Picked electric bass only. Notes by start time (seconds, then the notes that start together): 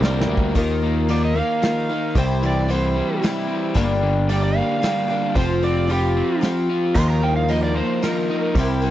0.01 C2
0.28 D2
0.55 D#2
2.15 C2
3.75 G1
5.35 F1
6.95 D#2
8.55 C2